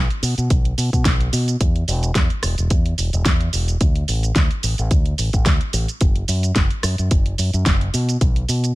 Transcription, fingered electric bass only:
0, 0, Header, 1, 2, 480
1, 0, Start_track
1, 0, Tempo, 550459
1, 1398, Time_signature, 4, 2, 24, 8
1, 7630, End_track
2, 0, Start_track
2, 0, Title_t, "Fingered electric bass"
2, 0, Program_c, 0, 33
2, 196, Note_on_c, 0, 47, 89
2, 300, Note_off_c, 0, 47, 0
2, 330, Note_on_c, 0, 47, 84
2, 415, Note_off_c, 0, 47, 0
2, 440, Note_on_c, 0, 35, 90
2, 632, Note_off_c, 0, 35, 0
2, 679, Note_on_c, 0, 47, 83
2, 781, Note_off_c, 0, 47, 0
2, 813, Note_on_c, 0, 47, 94
2, 896, Note_off_c, 0, 47, 0
2, 921, Note_on_c, 0, 35, 88
2, 1112, Note_off_c, 0, 35, 0
2, 1159, Note_on_c, 0, 47, 95
2, 1351, Note_off_c, 0, 47, 0
2, 1401, Note_on_c, 0, 40, 98
2, 1592, Note_off_c, 0, 40, 0
2, 1640, Note_on_c, 0, 28, 97
2, 1831, Note_off_c, 0, 28, 0
2, 1880, Note_on_c, 0, 40, 94
2, 1982, Note_off_c, 0, 40, 0
2, 2121, Note_on_c, 0, 28, 94
2, 2222, Note_off_c, 0, 28, 0
2, 2252, Note_on_c, 0, 28, 89
2, 2335, Note_off_c, 0, 28, 0
2, 2361, Note_on_c, 0, 40, 85
2, 2552, Note_off_c, 0, 40, 0
2, 2600, Note_on_c, 0, 28, 81
2, 2702, Note_off_c, 0, 28, 0
2, 2730, Note_on_c, 0, 28, 88
2, 2815, Note_off_c, 0, 28, 0
2, 2841, Note_on_c, 0, 40, 85
2, 3032, Note_off_c, 0, 40, 0
2, 3081, Note_on_c, 0, 28, 88
2, 3272, Note_off_c, 0, 28, 0
2, 3320, Note_on_c, 0, 38, 91
2, 3511, Note_off_c, 0, 38, 0
2, 3562, Note_on_c, 0, 33, 93
2, 3752, Note_off_c, 0, 33, 0
2, 3802, Note_on_c, 0, 38, 96
2, 3903, Note_off_c, 0, 38, 0
2, 4042, Note_on_c, 0, 33, 88
2, 4143, Note_off_c, 0, 33, 0
2, 4176, Note_on_c, 0, 33, 83
2, 4258, Note_off_c, 0, 33, 0
2, 4282, Note_on_c, 0, 38, 80
2, 4473, Note_off_c, 0, 38, 0
2, 4524, Note_on_c, 0, 33, 79
2, 4623, Note_off_c, 0, 33, 0
2, 4655, Note_on_c, 0, 33, 83
2, 4737, Note_off_c, 0, 33, 0
2, 4763, Note_on_c, 0, 38, 100
2, 4863, Note_off_c, 0, 38, 0
2, 5000, Note_on_c, 0, 33, 98
2, 5102, Note_off_c, 0, 33, 0
2, 5242, Note_on_c, 0, 30, 97
2, 5432, Note_off_c, 0, 30, 0
2, 5480, Note_on_c, 0, 42, 93
2, 5672, Note_off_c, 0, 42, 0
2, 5722, Note_on_c, 0, 30, 91
2, 5823, Note_off_c, 0, 30, 0
2, 5960, Note_on_c, 0, 42, 91
2, 6062, Note_off_c, 0, 42, 0
2, 6094, Note_on_c, 0, 42, 83
2, 6177, Note_off_c, 0, 42, 0
2, 6202, Note_on_c, 0, 30, 82
2, 6393, Note_off_c, 0, 30, 0
2, 6441, Note_on_c, 0, 42, 80
2, 6542, Note_off_c, 0, 42, 0
2, 6573, Note_on_c, 0, 42, 93
2, 6656, Note_off_c, 0, 42, 0
2, 6682, Note_on_c, 0, 30, 89
2, 6872, Note_off_c, 0, 30, 0
2, 6923, Note_on_c, 0, 47, 94
2, 7113, Note_off_c, 0, 47, 0
2, 7161, Note_on_c, 0, 35, 94
2, 7352, Note_off_c, 0, 35, 0
2, 7401, Note_on_c, 0, 47, 91
2, 7592, Note_off_c, 0, 47, 0
2, 7630, End_track
0, 0, End_of_file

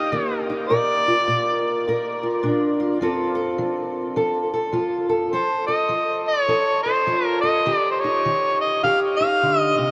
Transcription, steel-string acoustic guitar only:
0, 0, Header, 1, 2, 480
1, 0, Start_track
1, 0, Tempo, 580271
1, 576, Time_signature, 4, 2, 24, 8
1, 8198, End_track
2, 0, Start_track
2, 0, Title_t, "Steel-string acoustic guitar"
2, 0, Program_c, 0, 25
2, 0, Note_on_c, 0, 58, 60
2, 0, Note_on_c, 0, 63, 55
2, 0, Note_on_c, 0, 67, 63
2, 92, Note_off_c, 0, 58, 0
2, 99, Note_on_c, 0, 51, 72
2, 103, Note_on_c, 0, 58, 60
2, 393, Note_off_c, 0, 63, 0
2, 411, Note_on_c, 0, 63, 58
2, 540, Note_off_c, 0, 51, 0
2, 563, Note_off_c, 0, 63, 0
2, 572, Note_off_c, 0, 67, 0
2, 577, Note_on_c, 0, 46, 75
2, 582, Note_on_c, 0, 70, 70
2, 891, Note_on_c, 0, 65, 60
2, 1019, Note_off_c, 0, 46, 0
2, 1055, Note_on_c, 0, 46, 71
2, 1498, Note_off_c, 0, 46, 0
2, 1538, Note_off_c, 0, 70, 0
2, 1551, Note_on_c, 0, 46, 66
2, 1559, Note_on_c, 0, 70, 62
2, 1843, Note_off_c, 0, 65, 0
2, 1846, Note_on_c, 0, 65, 54
2, 1986, Note_off_c, 0, 46, 0
2, 2008, Note_on_c, 0, 46, 74
2, 2009, Note_off_c, 0, 58, 0
2, 2013, Note_on_c, 0, 62, 59
2, 2312, Note_off_c, 0, 65, 0
2, 2315, Note_on_c, 0, 65, 52
2, 2454, Note_off_c, 0, 46, 0
2, 2471, Note_off_c, 0, 62, 0
2, 2484, Note_off_c, 0, 70, 0
2, 2488, Note_on_c, 0, 53, 70
2, 2496, Note_off_c, 0, 65, 0
2, 2498, Note_on_c, 0, 60, 57
2, 2500, Note_on_c, 0, 65, 61
2, 2507, Note_on_c, 0, 69, 68
2, 2768, Note_off_c, 0, 69, 0
2, 2771, Note_on_c, 0, 69, 64
2, 2934, Note_off_c, 0, 53, 0
2, 2964, Note_on_c, 0, 53, 74
2, 3412, Note_off_c, 0, 53, 0
2, 3442, Note_on_c, 0, 53, 68
2, 3444, Note_off_c, 0, 69, 0
2, 3448, Note_on_c, 0, 69, 61
2, 3742, Note_off_c, 0, 69, 0
2, 3752, Note_on_c, 0, 69, 61
2, 3892, Note_off_c, 0, 53, 0
2, 3905, Note_off_c, 0, 65, 0
2, 3909, Note_on_c, 0, 53, 65
2, 3915, Note_on_c, 0, 65, 56
2, 4204, Note_off_c, 0, 69, 0
2, 4214, Note_on_c, 0, 69, 59
2, 4364, Note_off_c, 0, 53, 0
2, 4383, Note_off_c, 0, 65, 0
2, 4384, Note_off_c, 0, 69, 0
2, 4394, Note_off_c, 0, 60, 0
2, 4407, Note_on_c, 0, 53, 73
2, 4411, Note_on_c, 0, 69, 64
2, 4690, Note_off_c, 0, 69, 0
2, 4700, Note_on_c, 0, 69, 60
2, 4854, Note_off_c, 0, 53, 0
2, 4870, Note_on_c, 0, 53, 69
2, 5325, Note_off_c, 0, 53, 0
2, 5360, Note_off_c, 0, 69, 0
2, 5361, Note_on_c, 0, 53, 67
2, 5370, Note_on_c, 0, 69, 59
2, 5662, Note_off_c, 0, 69, 0
2, 5671, Note_on_c, 0, 69, 60
2, 5811, Note_off_c, 0, 53, 0
2, 5846, Note_on_c, 0, 53, 73
2, 5855, Note_on_c, 0, 65, 57
2, 6138, Note_off_c, 0, 69, 0
2, 6148, Note_on_c, 0, 69, 65
2, 6293, Note_off_c, 0, 53, 0
2, 6311, Note_off_c, 0, 69, 0
2, 6313, Note_off_c, 0, 65, 0
2, 6335, Note_on_c, 0, 51, 72
2, 6341, Note_on_c, 0, 67, 66
2, 6653, Note_on_c, 0, 63, 59
2, 6778, Note_off_c, 0, 51, 0
2, 6826, Note_on_c, 0, 51, 71
2, 7264, Note_off_c, 0, 51, 0
2, 7298, Note_off_c, 0, 67, 0
2, 7307, Note_on_c, 0, 51, 65
2, 7315, Note_on_c, 0, 67, 58
2, 7601, Note_off_c, 0, 63, 0
2, 7612, Note_on_c, 0, 63, 58
2, 7744, Note_off_c, 0, 51, 0
2, 7796, Note_on_c, 0, 50, 59
2, 8081, Note_off_c, 0, 50, 0
2, 8092, Note_on_c, 0, 48, 61
2, 8198, Note_off_c, 0, 48, 0
2, 8198, Note_off_c, 0, 63, 0
2, 8198, Note_off_c, 0, 67, 0
2, 8198, End_track
0, 0, End_of_file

